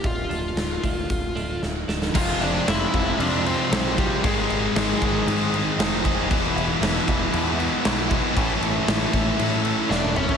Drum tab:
CC |----------------|x-x-x-x-x-x-x-x-|x-x-x-x-x-x-x-x-|x-x-x-x-x-x-x-x-|
HH |o-o-o-o-o-o-----|----------------|----------------|----------------|
SD |----o-------o-oo|----o-------o---|----o-------o---|----o-------o---|
T1 |----------------|----------------|----------------|----------------|
T2 |----------------|----------------|----------------|----------------|
FT |----------------|----------------|----------------|----------------|
BD |o-----o-o-------|o-----o-------o-|o-----o-------o-|o-----o-------o-|

CC |x-x-x-x-x-x-----|
HH |----------------|
SD |----o-------o---|
T1 |-------------o--|
T2 |--------------o-|
FT |---------------o|
BD |o-----o---------|